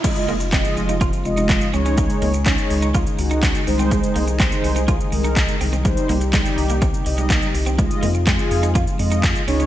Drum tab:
CC |x---------------|----------------|----------------|----------------|
HH |xx-xxx-xxx-xxx-x|xxoxxxoxxxoxxxox|xxoxxxoxxxoxxxox|xxoxxxoxxxoxxxox|
SH |xxxxxxxxxxxxxxxx|xxxxxxxxxxxxxxxx|xxxxxxxxxxxxxxxx|xxxxxxxxxxxxxxxx|
CP |----x-------x---|----x-------x---|----x-------x---|----x-------x---|
BD |o---o---o---o---|o---o---o---o---|o---o---o---o---|o---o---o---o---|

CC |----------------|
HH |xxoxxxoxxxoxxxox|
SH |xxxxxxxxxxxxxxxx|
CP |----x-------x---|
BD |o---o---o---o---|